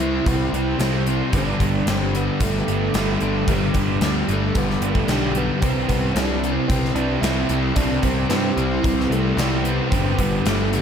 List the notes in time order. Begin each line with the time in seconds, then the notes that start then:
Already playing: C2 C3 G3 C4 E4 G4 B4
0.00 C3 G3 C4, closed hi-hat
0.26 C2 C3 G3 C4 B4, kick, closed hi-hat
0.53 C2 G3 C4 E4 G4, closed hi-hat
0.57 C3 G3
0.79 C2 C3 G3 C4 A4, snare, closed hi-hat
0.84 C4 E4 G4
1.07 C3 G3 C4, closed hi-hat
1.33 G1 G2 D3 G3 B4, kick, closed hi-hat
1.37 G3 B3 D4 G4
1.60 G1 D3 G3 G4, kick, closed hi-hat
1.87 G1 G2 D3 G3 C4, snare, closed hi-hat
2.13 G2 D3 G3 B3, closed hi-hat
2.40 G1 G2 D3 G3 A3 B4, kick, closed hi-hat
2.66 G1 D3 G3 B3 D4 G4, closed hi-hat
2.70 G2 D3
2.93 G1 G2 D3 G3 B3 A4, snare, closed hi-hat
2.98 A3 D4 G4
3.20 G1 G2 D3 G3, closed hi-hat
3.47 G1 G2 D3 G3 B3 D4 B4, kick, closed hi-hat
3.52 G3 G4
3.74 G1 D3 G3 G4, kick, closed hi-hat
4.01 D2 G2 D3 G3, snare, closed hi-hat
4.28 G1 G2 D3 G3, closed hi-hat
4.33 A3
4.55 G1 G2 D3 G3 B3 B4, kick, closed hi-hat
4.70 snare
4.81 G1 G3 B3 D4 G4, closed hi-hat
4.85 G2 D3 A3
4.95 kick
5.07 B1 G2 D3 G3 B3 D4 G4 A4, snare, closed hi-hat
5.11 D3 G3
5.35 G2 D3 G3 B3, closed hi-hat
5.61 C2 C3 G3 C4 E4 G4 B4, kick, closed hi-hat
5.89 C2 G3 B3 C4 G4, kick, closed hi-hat
6.14 C2 C3 G3 D4 E4, snare, closed hi-hat
6.19 C4
6.43 C3 G3 C4, closed hi-hat
6.68 C2 C3 G3 C4 B4, kick, closed hi-hat
6.85 snare
6.95 C2 G3 C4 D4 E4 G4, closed hi-hat
6.99 C3 G3
7.21 C2 C3 G3 C4 E4 A4, snare, closed hi-hat
7.26 E4 G4
7.49 C2 C3 G3 C4, closed hi-hat
7.53 G3
7.76 C2 C3 G3 C4 D4 E4 G4 B4, kick, closed hi-hat
8.03 C2 G3 C4 G4, kick, closed hi-hat
8.29 G2 C3 G3 C4 E4, snare, closed hi-hat
8.57 C2 C3 C4, closed hi-hat
8.61 G3
8.81 C2 C3 G3 C4 B4, kick, closed hi-hat
8.86 C3 G3 C4
9.00 snare
9.09 C2 C3 G3 A3 C4 E4 G4, closed hi-hat
9.14 G3 C4
9.37 C2 C3 G3 C4 E4 G4 A4, snare, closed hi-hat
9.41 C4
9.63 C3 B3 C4, closed hi-hat
9.68 G3
9.91 G1 G2 D3 G3 B3 C4 D4 G4 B4, kick, closed hi-hat
9.96 G3
10.19 G1 D3 G3 B3 G4, kick, closed hi-hat
10.46 G1 G2 D3 G3 A3, snare, closed hi-hat
10.73 G2 D3 G3, closed hi-hat